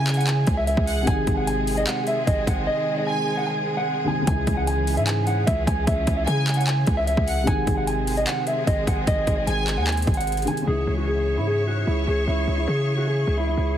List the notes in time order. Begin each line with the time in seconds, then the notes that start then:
Already playing: C#3 E3 G#3 C#4 E4 G#4 G#5
0.07 clap, closed hi-hat
0.14 F#5, closed hi-hat
0.21 closed hi-hat
0.27 G#5, clap, closed hi-hat
0.47 C#2, kick, closed hi-hat
0.57 E5
0.67 E5, closed hi-hat
0.77 C#2, kick
0.87 F#5, open hi-hat
0.97 C2
1.02 C3 D#3
1.07 G#1 D#3 G#3 C4 D#4 G#5, kick, closed hi-hat
1.13 G#4
1.27 G#1, kick, closed hi-hat
1.37 F#5
1.47 G#5, closed hi-hat
1.67 closed hi-hat, open hi-hat
1.77 D#5, closed hi-hat
1.87 F#5, clap, closed hi-hat
2.07 E5, closed hi-hat
2.27 G#1 D#5, kick, closed hi-hat
2.47 G#1 F#5, kick, closed hi-hat
2.67 D#5
2.97 D#5
3.07 G#5
3.37 F#5
3.47 G#5
3.77 F#5
4.04 C3 D#3 G#3 G#5
4.08 D#4 G#4
4.22 C#3 E3
4.27 C#2 E3 G#3 C#4 E4 G#5, kick, closed hi-hat
4.33 G#4
4.47 C#2, kick, closed hi-hat
4.57 F#5
4.67 G#5, closed hi-hat
4.87 closed hi-hat, open hi-hat
4.97 G#2 E5, closed hi-hat
5.07 G#5, clap, closed hi-hat
5.27 F#5, closed hi-hat
5.47 C#2 E5, kick, closed hi-hat
5.67 C#2 G#5, kick, closed hi-hat
5.87 C#2 E5, kick, closed hi-hat
6.07 C#2, kick, closed hi-hat
6.17 E5
6.27 C#3 G#5, closed hi-hat
6.47 clap, closed hi-hat
6.54 F#5, closed hi-hat
6.61 closed hi-hat
6.67 G#5, clap, closed hi-hat
6.87 C#2, kick, closed hi-hat
6.97 E5
7.07 E5, closed hi-hat
7.17 C#2, kick
7.27 F#5, open hi-hat
7.37 C2
7.43 C3 D#3
7.47 G#1 D#3 G#3 C4 D#4 G#4 G#5, kick, closed hi-hat
7.53 G#4
7.67 G#1, kick, closed hi-hat
7.77 F#5
7.87 G#5, closed hi-hat
8.07 closed hi-hat, open hi-hat
8.17 D#5, closed hi-hat
8.27 F#5, clap, closed hi-hat
8.47 E5, closed hi-hat
8.67 G#1 D#5, kick, closed hi-hat
8.87 G#1 F#5, kick, closed hi-hat
9.07 G#1 D#5, kick, closed hi-hat
9.27 G#1, kick, closed hi-hat
9.38 D#5
9.47 G#1 G#5, closed hi-hat
9.67 clap, closed hi-hat
9.77 D#2 F#5
9.87 G#5, clap, closed hi-hat
9.92 closed hi-hat
9.97 closed hi-hat
10.02 closed hi-hat
10.07 G#1, kick, closed hi-hat
10.14 F#5, closed hi-hat
10.21 closed hi-hat
10.27 closed hi-hat
10.32 closed hi-hat
10.37 closed hi-hat
10.42 C3 D#3, closed hi-hat
10.47 G#3 D#4 G#4 G#5, closed hi-hat
10.57 closed hi-hat
10.62 C#3 E3
10.67 C#2 G#3 E4 G#4 C#5 E5 C#6
10.73 G#4
10.87 C#2
10.97 F#4
11.08 G#4
11.37 G#2 E4
11.47 G#4
11.68 F#4
11.87 C#2 E4
12.07 C#2 G#4
12.27 C#2 E4
12.48 C#2
12.58 E4
12.68 C#3 G#4
12.98 F#4
13.07 G#4
13.27 C#2
13.37 E4
13.47 E4
13.57 C#2